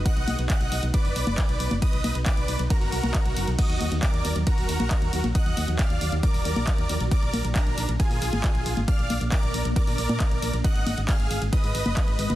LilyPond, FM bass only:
\new Staff \with { instrumentName = "FM bass" } { \clef bass \time 4/4 \key ees \minor \tempo 4 = 136 r16 b,,16 b,,16 b,,16 r16 b,,16 b,,16 b,,16 r16 fis,,16 b,,16 fis,,16 r16 b,,16 b,,16 fis,,16 | r16 b,,16 b,,16 b,,16 r16 b,,16 b,,16 b,,16 r16 fis,,16 b,,16 b,,16 r16 b,,16 fis,,16 b,,16 | r16 ees,16 ees,16 ees,16 r16 ees,16 ees,16 ees,16 r16 ees,,16 ees,16 bes,,16 r16 ees,16 ees,16 bes,,16 | r16 ees,16 ees,16 ees,16 r16 ees,16 ees,16 ees,16 r16 ees,,16 ees,16 bes,,16 r16 ees,16 ees,16 bes,,16 |
r16 bes,,16 bes,,16 bes,,16 r16 bes,,16 bes,,16 bes,,16 r16 bes,16 bes,,16 aes,,16 r16 bes,,16 bes,,16 aes,,16 | r16 bes,,16 bes,,16 bes,,16 r16 bes,,16 bes,,16 bes,,16 r16 bes,16 bes,,16 bes,16 r16 bes,,16 bes,,16 bes,,16 | r16 aes,,16 aes,,16 aes,,16 r16 aes,,16 aes,,16 aes,,16 r16 aes,16 aes,,16 ges,,16 r16 aes,,16 aes,,16 ges,,16 | }